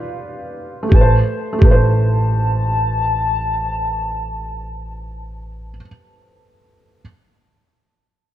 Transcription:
Already playing: felt piano F4 G4 B4 D5, soft synth lead F5
0.83 felt piano A3
0.89 upright bass A1, felt piano G4, kick
0.94 felt piano B4, soft synth lead A5
1.01 felt piano C5
1.53 felt piano A3
1.59 upright bass A1, felt piano G4, kick
1.63 felt piano B4, soft synth lead A5
1.71 felt piano C5

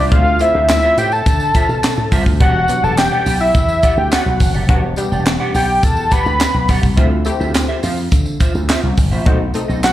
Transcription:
Already playing: analog synth lead D5, clean electric guitar E5
0.00 clean electric guitar F4 C5
0.11 slap bass D2, analog polysynth A3 C4 E4 F4, clean electric guitar F4 C5 E5, analog synth lead F5, kick, closed hi-hat
0.26 muted clean electric guitar stroke
0.39 analog polysynth A3 C4 E4 F4, analog synth lead E5, muted clean electric guitar stroke, closed hi-hat, tambourine
0.55 slap bass D2, clean electric guitar F4 C5 F5
0.69 analog synth lead E5, snare, clap, closed hi-hat, tambourine
0.83 clean electric guitar F4 C5 E5
0.97 slap bass A2, clean electric guitar F4 C5 E5, analog synth lead G5, closed hi-hat, tambourine
1.12 analog synth lead A5, tambourine
1.26 slap bass D3, kick, closed hi-hat, tambourine
1.40 muted clean electric guitar stroke, tambourine
1.54 clean electric guitar F4 C5 E5, kick, closed hi-hat, tambourine
1.69 slap bass B2, muted clean electric guitar stroke, tambourine
1.83 muted clean electric guitar stroke, snare, clap, closed hi-hat, tambourine
1.98 slap bass A2, muted clean electric guitar stroke
2.12 slap bass C2, clean electric guitar F4 C5 E5, kick, open hi-hat, tambourine
2.26 slap bass D2, muted clean electric guitar stroke, kick, tambourine
2.40 slap bass E1, analog polysynth G3 B3 D4 F#4, clean electric guitar G4 D5 F#5, analog synth lead F#5, kick, closed hi-hat
2.55 muted clean electric guitar stroke
2.68 analog polysynth F#3 G3 B3 D4, muted clean electric guitar stroke, closed hi-hat, tambourine
2.83 slap bass E1, clean electric guitar G4 D5 F#5, analog synth lead A5, tambourine
2.97 analog synth lead G5, snare, clap, closed hi-hat, tambourine
3.12 clean electric guitar G4 D5 F#5
3.26 slap bass B1, clean electric guitar G4 D5 G5, open hi-hat, tambourine
3.40 analog synth lead E5, muted clean electric guitar stroke, tambourine
3.54 slap bass E2, analog synth lead E5, muted clean electric guitar stroke, kick, closed hi-hat, tambourine
3.68 muted clean electric guitar stroke, tambourine
3.83 clean electric guitar G4 D5 F#5, kick, closed hi-hat, tambourine
3.97 slap bass D2, analog synth lead G5, muted clean electric guitar stroke
4.11 clean electric guitar G4 D5 F#5, analog synth lead F#5, snare, clap, closed hi-hat, tambourine
4.26 slap bass B1, muted clean electric guitar stroke
4.40 slap bass E1, muted clean electric guitar stroke, kick, open hi-hat, tambourine
4.54 slap bass F#1, clean electric guitar G4 D5 F#5, tambourine
4.69 slap bass E1, analog polysynth G3 B3 D4 F#4, clean electric guitar G4 D5 F#5, kick, closed hi-hat
4.83 muted clean electric guitar stroke
4.96 analog polysynth G3 B3 D4 G4, muted clean electric guitar stroke, closed hi-hat, tambourine
5.12 slap bass E1, clean electric guitar G4 D5 G5, tambourine
5.26 snare, clap, closed hi-hat, tambourine
5.40 clean electric guitar G4 D5 F#5
5.54 slap bass B1, clean electric guitar G4 D5 F#5, analog synth lead G5, open hi-hat, tambourine
5.69 muted clean electric guitar stroke
5.83 slap bass E2, analog synth lead A5, kick, closed hi-hat, tambourine
5.97 muted clean electric guitar stroke, tambourine
6.11 clean electric guitar G4 D5 F#5, analog synth lead B5, kick, closed hi-hat, tambourine
6.26 slap bass D2, muted clean electric guitar stroke, tambourine
6.40 muted clean electric guitar stroke, snare, clap, closed hi-hat, tambourine
6.54 slap bass B1, muted clean electric guitar stroke
6.68 slap bass B1, clean electric guitar G4 D5 F#5, kick, open hi-hat, tambourine
6.83 slap bass C2, muted clean electric guitar stroke, kick, tambourine
6.97 slap bass D2, analog polysynth A3 C4 E4 F4, clean electric guitar F4 C5 E5, kick, closed hi-hat
7.11 muted clean electric guitar stroke
7.25 analog polysynth A3 C4 E4 G4, muted clean electric guitar stroke, closed hi-hat, tambourine
7.40 slap bass D2, clean electric guitar F4 C5 E5, tambourine
7.54 snare, clap, closed hi-hat, tambourine
7.69 clean electric guitar F4 C5 E5
7.83 slap bass F2, clean electric guitar F4 C5 F5, open hi-hat, tambourine
7.97 muted clean electric guitar stroke, tambourine
8.11 slap bass D3, muted clean electric guitar stroke, kick, closed hi-hat, tambourine
8.26 muted clean electric guitar stroke, tambourine
8.40 clean electric guitar F4 C5 E5, kick, closed hi-hat, tambourine
8.55 slap bass D2, muted clean electric guitar stroke, tambourine
8.69 clean electric guitar F4 C5 E5, snare, clap, closed hi-hat, tambourine
8.83 slap bass C2, muted clean electric guitar stroke
8.97 slap bass G1, muted clean electric guitar stroke, kick, open hi-hat, tambourine
9.11 slap bass A1, clean electric guitar F4 C5 E5, tambourine
9.26 slap bass B1, analog polysynth A3 C4 D#4 F#4, clean electric guitar D#4 A4 C5, kick, closed hi-hat
9.40 muted clean electric guitar stroke
9.54 analog polysynth A3 C4 D#4 A4, muted clean electric guitar stroke, closed hi-hat, tambourine
9.68 slap bass B1, clean electric guitar D#4 A4 D#5, tambourine
9.83 analog synth lead F#5, snare, clap, closed hi-hat, tambourine

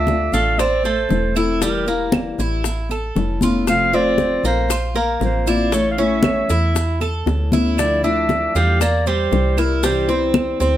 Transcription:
Already playing: fm bass D2, cuban tres D4, clarinet E5
0.07 steel-string acoustic guitar D3 A3 D4 F4, high bongo, high conga, maracas
0.32 fm bass A1, cuban tres A3, clarinet F5, high bongo, high conga, maracas
0.58 cuban tres C4, clarinet D5, muted steel-string acoustic guitar stroke, high bongo, high conga, claves, maracas
0.83 cuban tres A3, clarinet C5, high bongo, high conga, maracas
1.09 fm bass E1, steel-string acoustic guitar E3 A3 C4, high bongo, low bongo, high conga, maracas
1.13 steel-string acoustic guitar E4
1.35 steel-string acoustic guitar C4 E4, cuban tres E4, clarinet A4, high bongo, high conga, claves, maracas
1.39 steel-string acoustic guitar A3
1.61 steel-string acoustic guitar E3 G3 E4, cuban tres G3, clarinet A#4, high bongo, high conga, maracas
1.86 steel-string acoustic guitar G3 E4, cuban tres A#3, high conga, maracas
2.12 steel-string acoustic guitar E3 G3, high bongo, high conga, claves, maracas
2.16 steel-string acoustic guitar E4
2.38 fm bass A1, cuban tres E4, high bongo, high conga, maracas
2.64 muted steel-string acoustic guitar stroke, high bongo, high conga, maracas
2.89 cuban tres A4, high bongo, high conga, claves, maracas
3.15 fm bass F1, steel-string acoustic guitar E3 A3 C#4 E4, high bongo, low bongo, high conga, maracas
3.41 steel-string acoustic guitar A3 C#4 E4, cuban tres F4, high bongo, high conga, maracas
3.67 steel-string acoustic guitar C3 F3 A3 C4 F4, clarinet F5, high bongo, high conga, claves, maracas
3.92 steel-string acoustic guitar F3 A3 C4 F4, cuban tres C4, clarinet D5, high conga, maracas
4.18 steel-string acoustic guitar F3 A3 C4 F4, high bongo, high conga, maracas
4.43 fm bass A#1, cuban tres A#3, clarinet C5, high bongo, high conga, maracas
4.69 cuban tres F4, muted steel-string acoustic guitar stroke, high bongo, high conga, claves, maracas
4.95 cuban tres A#3, high bongo, high conga, maracas
5.20 fm bass A1, steel-string acoustic guitar F3 A#3 C4 F4, clarinet C5, high bongo, low bongo, high conga, maracas
5.46 steel-string acoustic guitar A#3 C4 F4, cuban tres E4, clarinet D5, high bongo, high conga, claves, maracas
5.71 steel-string acoustic guitar E3 A3 C#4 E4, cuban tres A3, clarinet C#5, high bongo, high conga, maracas
5.91 clarinet F5
5.98 steel-string acoustic guitar A3 C#4 E4, cuban tres C#4, clarinet E5, high conga, maracas
6.23 steel-string acoustic guitar E3 C#4 E4, high bongo, high conga, claves, maracas
6.49 fm bass E2, cuban tres E4, high bongo, high conga, maracas
6.75 muted steel-string acoustic guitar stroke, high bongo, high conga, maracas
7.01 cuban tres A4, high bongo, high conga, claves, maracas
7.26 fm bass D2, steel-string acoustic guitar E3 A3 C#4 E4, high bongo, high conga, maracas
7.52 steel-string acoustic guitar A3 C#4 E4, cuban tres E4, low bongo, high conga, maracas
7.77 steel-string acoustic guitar D3 F3 A3 D4 E4, clarinet D5, high bongo, high conga, claves, maracas
8.03 steel-string acoustic guitar F3 A3 D4 E4, cuban tres D4, clarinet E5, high conga, maracas
8.29 steel-string acoustic guitar F3 A3 D4, high bongo, high conga, maracas
8.55 fm bass E2, cuban tres G3, clarinet F5, high bongo, high conga, maracas
8.80 cuban tres A#3, clarinet D5, muted steel-string acoustic guitar stroke, high bongo, high conga, claves, maracas
9.06 cuban tres G3, clarinet C5, high bongo, high conga, maracas
9.31 fm bass C2, steel-string acoustic guitar E3 G3 E4, high bongo, low bongo, high conga, maracas
9.57 steel-string acoustic guitar G3 E4, cuban tres E4, clarinet A#4, high bongo, high conga, claves, maracas
9.83 steel-string acoustic guitar C3 E3 G3 C4 E4, cuban tres G3, clarinet C5, high bongo, high conga, maracas
10.08 steel-string acoustic guitar E3 G3 C4 E4, cuban tres C4, high conga, maracas
10.34 steel-string acoustic guitar E3 E4, high bongo, high conga, claves, maracas
10.60 fm bass D2, cuban tres C4, high bongo, high conga, maracas

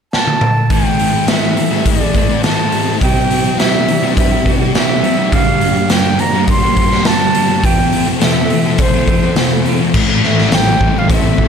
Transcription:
0.13 flute A5, snare
0.27 high tom
0.41 mid tom
0.69 overdriven electric guitar A2 E3 C4 E4 A4, analog synth pad E3 G3 A3 C4 G4, distorted electric guitar A3, flute G5, kick, open hi-hat
0.84 overdriven electric guitar C4 E4 A4
0.99 overdriven electric guitar E3 C4 E4 A4, open hi-hat
1.13 distorted electric guitar E3 A3
1.27 overdriven electric guitar A2 E3 C4 E4 A4, distorted electric guitar A3, flute E5, snare, open hi-hat
1.56 overdriven electric guitar E3 C4 E4 A4, muted distorted electric guitar stroke, open hi-hat
1.71 distorted electric guitar E3 A3, overdriven electric guitar C4 E4 A4
1.86 flute D5, kick, open hi-hat
2.00 distorted electric guitar E3 A3, overdriven electric guitar C4 E4 A4
2.14 distorted electric guitar A2 A3, overdriven electric guitar E3 C4 E4 A4, kick, open hi-hat
2.29 overdriven electric guitar C4 E4 A4, muted distorted electric guitar stroke
2.43 overdriven electric guitar A2 E3 C4 E4 A4, distorted electric guitar A3, flute A5, snare, open hi-hat
2.72 distorted electric guitar A2 A3, overdriven electric guitar E3 C4 E4 A4, open hi-hat
2.87 distorted electric guitar E3 A3, overdriven electric guitar C4 E4 A4
3.01 overdriven electric guitar C3 G3 C4 E4 G4, analog synth pad E3 G3 D4, flute G5, kick, open hi-hat
3.17 overdriven electric guitar C4 E4 G4
3.30 overdriven electric guitar G3 C4 E4 G4, open hi-hat
3.45 distorted electric guitar G3 C4
3.59 overdriven electric guitar C3 G3 C4 E4 G4, flute E5, snare, open hi-hat
3.88 overdriven electric guitar G3 C4 E4 G4, muted distorted electric guitar stroke, open hi-hat
4.03 distorted electric guitar G3, overdriven electric guitar C4 E4 G4
4.17 flute E5, kick, open hi-hat
4.31 distorted electric guitar G3, overdriven electric guitar C4 E4 G4
4.45 distorted electric guitar C3, overdriven electric guitar G3 C4 E4, kick, open hi-hat
4.49 overdriven electric guitar G4
4.60 overdriven electric guitar C4 E4 G4, muted distorted electric guitar stroke
4.74 overdriven electric guitar C3 G3 C4 E4 G4, flute E5, snare, open hi-hat
5.02 distorted electric guitar C3, overdriven electric guitar G3 C4 E4, open hi-hat
5.07 overdriven electric guitar G4
5.16 distorted electric guitar G3 C4, overdriven electric guitar E4 G4
5.21 overdriven electric guitar C4
5.32 overdriven electric guitar G2 D3 G3 A#3 D4 G4, analog synth pad F3 A#3, flute F5, kick, open hi-hat
5.47 overdriven electric guitar G3 A#3 D4 G4
5.61 overdriven electric guitar G3 A#3 D4 G4, open hi-hat
5.75 distorted electric guitar D3 G3
5.90 overdriven electric guitar G2 D3 G3 A#3 D4 G4, flute G5, snare, open hi-hat
6.19 overdriven electric guitar G3 A#3 D4 G4, flute A#5, muted distorted electric guitar stroke, open hi-hat
6.33 distorted electric guitar D3, overdriven electric guitar G3 A#3 D4 G4
6.48 flute C6, kick, open hi-hat
6.62 distorted electric guitar D3 G3, overdriven electric guitar A#3 D4 G4
6.66 overdriven electric guitar G3
6.76 distorted electric guitar G2 D3, overdriven electric guitar G3 A#3 D4 G4, kick, open hi-hat
6.91 overdriven electric guitar G3 A#3 D4 G4, muted distorted electric guitar stroke, snare
7.05 overdriven electric guitar G2 D3 G3 A#3, flute A5, snare, open hi-hat
7.09 overdriven electric guitar D4 G4
7.34 distorted electric guitar G2 D3, overdriven electric guitar G3 A#3 D4 G4, open hi-hat
7.48 distorted electric guitar D3, overdriven electric guitar G3 A#3 D4 G4
7.63 overdriven electric guitar F2 C3 F3 A3 C4 F4, analog synth pad F3 A3 C4 A4, flute G5, kick, open hi-hat
7.78 overdriven electric guitar F3 A3 C4 F4
7.92 overdriven electric guitar F3 A3 C4 F4, open hi-hat
8.07 distorted electric guitar C3 F3
8.21 overdriven electric guitar F2 C3 F3 A3 C4 F4, flute E5, snare, open hi-hat
8.50 overdriven electric guitar F3 A3 C4 F4, muted distorted electric guitar stroke, open hi-hat
8.65 distorted electric guitar C3, overdriven electric guitar F3 A3 C4 F4
8.78 flute C5, kick, open hi-hat
8.92 distorted electric guitar C3 F3, overdriven electric guitar A3 C4 F4
8.97 overdriven electric guitar F3
9.07 distorted electric guitar F2 C3, overdriven electric guitar F3 A3 C4, kick, open hi-hat
9.11 overdriven electric guitar F4
9.22 overdriven electric guitar F3 A3 C4 F4, muted distorted electric guitar stroke
9.36 overdriven electric guitar F2 C3 F3 A3 C4 F4, snare, open hi-hat
9.65 distorted electric guitar F2 C3, overdriven electric guitar F3 A3 C4, open hi-hat
9.69 overdriven electric guitar F4
9.79 distorted electric guitar C3, overdriven electric guitar F3 A3 C4 F4
9.94 picked electric bass A1, overdriven electric guitar A2, analog synth pad G3 A3 C4 E4 A4, kick, crash
10.23 picked electric bass A1, overdriven electric guitar E3, flute E5, snare
10.38 snare
10.52 picked electric bass A1, overdriven electric guitar E3, distorted electric guitar G3, flute G5, snare, open hi-hat
10.81 picked electric bass A1, overdriven electric guitar G3, distorted electric guitar E4, kick
10.98 flute F5
11.10 picked electric bass A1, overdriven electric guitar C4, flute E5, kick, open hi-hat
11.38 picked electric bass A1, distorted electric guitar E3, overdriven electric guitar G3, kick

